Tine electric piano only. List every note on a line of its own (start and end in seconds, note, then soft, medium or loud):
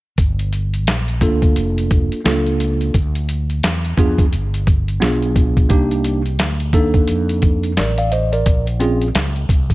1.21 2.19 A#3 medium
1.21 2.20 D4 medium
1.21 2.20 F4 medium
1.21 2.20 A4 medium
2.25 2.94 A#3 medium
2.25 2.94 D4 medium
2.25 2.94 F4 medium
2.25 2.95 A4 medium
3.97 4.24 B3 medium
3.97 4.24 D4 medium
3.97 4.24 F4 medium
3.97 4.25 G#4 medium
5.00 5.70 B3 medium
5.00 5.69 D4 medium
5.00 5.70 F4 medium
5.00 5.71 G#4 medium
5.69 6.21 A#3 medium
5.69 6.21 D4 medium
5.69 6.21 D#4 medium
5.69 6.22 G4 medium
6.73 7.71 A#3 medium
6.73 7.72 D4 medium
6.73 7.72 D#4 medium
6.73 7.72 A4 medium
7.77 7.97 A#4 medium
7.77 7.97 D5 medium
7.98 8.11 D5 medium
7.98 8.11 F5 medium
8.12 8.32 C5 medium
8.12 8.32 D#5 medium
8.33 8.66 A#4 medium
8.33 8.65 D5 medium
8.80 9.06 C4 medium
8.80 9.07 C#4 medium
8.80 9.07 F4 medium
8.80 9.07 G#4 medium